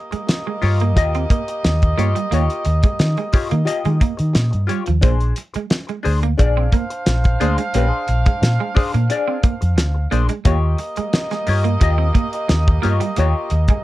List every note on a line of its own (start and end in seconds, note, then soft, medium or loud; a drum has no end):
0.00 4.65 A#3 medium
0.00 4.66 G4 medium
0.00 4.65 D#5 medium
0.11 0.21 G#3 medium
0.11 muted hollow-body jazz guitar stroke medium
0.11 muted fingered electric bass stroke soft
0.11 closed hi-hat soft
0.27 muted hollow-body jazz guitar stroke soft
0.27 snare loud
0.27 closed hi-hat medium
0.46 0.56 G#3 medium
0.46 muted hollow-body jazz guitar stroke medium
0.62 0.97 G2 loud
0.62 0.82 F4 medium
0.62 0.80 G4 medium
0.62 0.79 C#5 medium
0.62 muted clean electric guitar stroke soft
0.62 open hi-hat medium
0.80 0.90 A#3 medium
0.80 muted hollow-body jazz guitar stroke soft
0.80 closed hi-hat soft
0.96 1.25 D#2 medium
0.96 1.27 F4 medium
0.96 1.28 G4 medium
0.96 1.28 D#5 medium
0.96 muted clean electric guitar stroke soft
0.96 kick medium
0.96 closed hi-hat medium
1.15 1.24 C4 medium
1.15 closed hi-hat soft
1.30 1.41 A#3 medium
1.30 muted hollow-body jazz guitar stroke soft
1.30 kick medium
1.30 closed hi-hat medium
1.48 muted hollow-body jazz guitar stroke soft
1.48 closed hi-hat medium
1.64 1.93 D#2 medium
1.64 muted hollow-body jazz guitar stroke soft
1.64 muted clean electric guitar stroke soft
1.64 snare loud
1.64 closed hi-hat medium
1.82 muted hollow-body jazz guitar stroke soft
1.82 kick medium
1.82 closed hi-hat soft
1.98 2.13 G2 medium
1.98 2.08 A#3 medium
1.98 2.18 F4 loud
1.98 2.16 G4 medium
1.98 2.15 C#5 medium
1.98 closed hi-hat medium
2.15 2.25 G3 medium
2.15 muted hollow-body jazz guitar stroke soft
2.15 closed hi-hat medium
2.31 2.47 D#2 loud
2.31 2.42 A#3 medium
2.31 2.64 F4 medium
2.31 2.64 G4 medium
2.31 2.64 C#5 medium
2.31 closed hi-hat medium
2.50 closed hi-hat soft
2.65 2.81 D#2 loud
2.65 muted clean electric guitar stroke soft
2.65 closed hi-hat medium
2.83 2.93 G#3 medium
2.83 muted hollow-body jazz guitar stroke soft
2.83 kick loud
2.83 closed hi-hat soft
2.99 3.15 D#3 loud
2.99 muted hollow-body jazz guitar stroke soft
2.99 snare loud
2.99 closed hi-hat medium
3.17 3.27 G#3 medium
3.17 muted hollow-body jazz guitar stroke soft
3.17 closed hi-hat soft
3.33 3.54 F4 medium
3.33 3.50 G4 medium
3.33 3.49 C#5 medium
3.33 muted clean electric guitar stroke soft
3.33 muted fingered electric bass stroke soft
3.33 kick medium
3.33 open hi-hat medium
3.50 3.65 D#3 medium
3.50 3.61 A#3 medium
3.50 muted hollow-body jazz guitar stroke soft
3.50 closed hi-hat soft
3.65 3.98 F4 medium
3.65 3.98 G4 medium
3.65 3.99 D#5 medium
3.65 muted clean electric guitar stroke soft
3.65 closed hi-hat medium
3.85 3.99 D#3 medium
3.85 3.95 G#3 medium
3.85 closed hi-hat soft
4.00 4.12 A#3 medium
4.00 muted hollow-body jazz guitar stroke soft
4.00 kick medium
4.00 closed hi-hat medium
4.17 4.33 D#3 medium
4.17 muted hollow-body jazz guitar stroke medium
4.17 closed hi-hat soft
4.33 4.50 A#2 loud
4.33 muted hollow-body jazz guitar stroke soft
4.33 muted clean electric guitar stroke soft
4.33 snare loud
4.33 closed hi-hat loud
4.51 4.67 G2 medium
4.51 muted hollow-body jazz guitar stroke soft
4.51 closed hi-hat soft
4.67 4.79 G3 medium
4.67 4.89 F4 medium
4.67 4.86 G4 medium
4.67 4.84 C#5 medium
4.67 closed hi-hat medium
4.86 5.01 D#2 medium
4.86 4.97 F3 medium
4.86 muted hollow-body jazz guitar stroke soft
4.86 closed hi-hat medium
5.01 5.31 A#1 loud
5.01 5.13 A#3 medium
5.01 5.34 D4 medium
5.01 5.34 G#4 medium
5.01 5.35 C5 medium
5.01 kick loud
5.01 closed hi-hat medium
5.20 closed hi-hat soft
5.36 muted clean electric guitar stroke soft
5.36 closed hi-hat medium
5.54 5.65 G#3 medium
5.54 muted hollow-body jazz guitar stroke soft
5.54 muted fingered electric bass stroke soft
5.54 closed hi-hat medium
5.70 muted hollow-body jazz guitar stroke soft
5.70 snare loud
5.70 closed hi-hat medium
5.87 5.98 G#3 medium
5.87 muted hollow-body jazz guitar stroke soft
5.87 closed hi-hat soft
6.03 6.34 D2 loud
6.03 6.25 D4 medium
6.03 6.22 G#4 medium
6.03 6.20 C5 loud
6.03 muted clean electric guitar stroke soft
6.03 open hi-hat medium
6.22 6.32 A#3 medium
6.22 muted hollow-body jazz guitar stroke soft
6.22 closed hi-hat soft
6.38 6.68 A#1 loud
6.38 6.70 D4 medium
6.38 10.08 D4 medium
6.38 6.70 G#4 medium
6.38 10.08 C5 medium
6.38 6.71 D5 medium
6.38 10.08 F5 medium
6.38 muted clean electric guitar stroke soft
6.38 kick medium
6.38 closed hi-hat medium
6.57 6.66 C4 medium
6.72 6.83 A#3 medium
6.72 muted hollow-body jazz guitar stroke soft
6.72 kick medium
6.72 closed hi-hat medium
6.90 muted hollow-body jazz guitar stroke soft
6.90 closed hi-hat medium
7.06 7.35 A#1 medium
7.06 muted hollow-body jazz guitar stroke soft
7.06 muted clean electric guitar stroke soft
7.06 snare loud
7.06 closed hi-hat loud
7.24 muted hollow-body jazz guitar stroke soft
7.24 kick medium
7.24 closed hi-hat soft
7.40 7.56 D2 medium
7.40 7.51 A#3 medium
7.40 7.61 D4 loud
7.40 7.59 G#4 medium
7.40 7.58 C5 loud
7.40 closed hi-hat medium
7.58 7.67 G#3 medium
7.58 muted hollow-body jazz guitar stroke soft
7.58 closed hi-hat medium
7.74 7.90 A#1 loud
7.74 7.85 A#3 medium
7.74 7.87 C#4 medium
7.74 7.88 G4 medium
7.74 7.90 B4 medium
7.74 closed hi-hat medium
7.87 8.06 D4 medium
7.87 8.07 G#4 medium
7.87 8.07 C5 medium
8.08 8.24 A#1 medium
8.08 muted clean electric guitar stroke soft
8.08 closed hi-hat medium
8.25 8.35 G#3 medium
8.25 muted hollow-body jazz guitar stroke soft
8.25 kick medium
8.25 closed hi-hat soft
8.41 8.57 A#2 medium
8.41 muted hollow-body jazz guitar stroke soft
8.41 snare loud
8.41 closed hi-hat medium
8.59 8.69 G#3 medium
8.59 muted hollow-body jazz guitar stroke medium
8.75 8.96 D4 medium
8.75 8.94 G#4 medium
8.75 8.93 C5 medium
8.75 muted clean electric guitar stroke soft
8.75 muted fingered electric bass stroke soft
8.75 kick medium
8.75 open hi-hat medium
8.94 9.08 A#2 medium
8.94 9.03 A#3 medium
8.94 muted hollow-body jazz guitar stroke soft
8.94 closed hi-hat soft
9.10 9.42 D4 medium
9.10 9.42 G#4 medium
9.10 9.42 D5 medium
9.10 muted clean electric guitar stroke soft
9.10 closed hi-hat medium
9.28 9.37 C4 medium
9.43 9.54 A#3 medium
9.43 muted hollow-body jazz guitar stroke soft
9.43 muted fingered electric bass stroke soft
9.43 kick medium
9.43 closed hi-hat medium
9.61 9.78 F2 medium
9.61 muted hollow-body jazz guitar stroke soft
9.61 closed hi-hat soft
9.77 10.06 D2 medium
9.77 muted hollow-body jazz guitar stroke soft
9.77 muted clean electric guitar stroke soft
9.77 snare loud
9.77 closed hi-hat loud
9.94 muted hollow-body jazz guitar stroke soft
10.11 10.27 A#1 medium
10.11 10.22 A#3 medium
10.11 10.32 D4 loud
10.11 10.29 G#4 medium
10.11 10.28 C5 loud
10.11 closed hi-hat medium
10.29 10.38 G#3 medium
10.29 muted hollow-body jazz guitar stroke soft
10.29 closed hi-hat medium
10.45 10.74 D#2 loud
10.45 13.84 A#3 medium
10.45 10.56 A#3 medium
10.45 10.77 F4 medium
10.45 13.84 G4 medium
10.45 10.77 G4 medium
10.45 10.78 C#5 loud
10.45 13.84 D#5 medium
10.45 kick loud
10.45 closed hi-hat medium
10.78 muted clean electric guitar stroke soft
10.78 closed hi-hat medium
10.96 11.07 G#3 medium
10.96 muted hollow-body jazz guitar stroke medium
10.96 muted fingered electric bass stroke soft
10.96 closed hi-hat medium
11.13 muted hollow-body jazz guitar stroke soft
11.13 snare loud
11.13 closed hi-hat medium
11.31 11.40 G#3 medium
11.31 muted hollow-body jazz guitar stroke soft
11.31 snare soft
11.31 closed hi-hat soft
11.47 11.76 G2 medium
11.47 11.68 F4 medium
11.47 11.65 G4 medium
11.47 11.64 C#5 medium
11.47 muted clean electric guitar stroke soft
11.47 open hi-hat medium
11.64 11.74 A#3 medium
11.64 muted hollow-body jazz guitar stroke soft
11.64 closed hi-hat soft
11.80 12.09 D#2 loud
11.80 12.13 F4 medium
11.80 12.13 G4 medium
11.80 12.14 D#5 medium
11.80 muted clean electric guitar stroke soft
11.80 kick loud
11.80 closed hi-hat medium
11.98 12.07 C4 medium
12.14 12.25 A#3 medium
12.14 muted hollow-body jazz guitar stroke soft
12.14 kick medium
12.14 closed hi-hat medium
12.33 muted hollow-body jazz guitar stroke soft
12.33 closed hi-hat medium
12.48 12.78 D#2 medium
12.48 muted clean electric guitar stroke soft
12.48 muted hollow-body jazz guitar stroke soft
12.48 snare loud
12.48 closed hi-hat medium
12.67 muted hollow-body jazz guitar stroke soft
12.67 kick medium
12.82 12.99 G2 medium
12.82 12.92 A#3 medium
12.82 13.03 F4 loud
12.82 13.01 G4 medium
12.82 13.01 C#5 loud
12.82 closed hi-hat medium
13.00 13.10 G3 medium
13.00 muted hollow-body jazz guitar stroke soft
13.00 closed hi-hat medium
13.16 13.32 D#2 loud
13.16 13.27 A#3 medium
13.16 13.49 F4 medium
13.16 13.49 G4 loud
13.16 13.49 C#5 medium
13.16 closed hi-hat medium
13.50 13.66 D#2 medium
13.50 muted clean electric guitar stroke soft
13.50 closed hi-hat medium
13.68 13.79 G#3 medium
13.68 muted hollow-body jazz guitar stroke soft
13.68 kick medium
13.68 closed hi-hat soft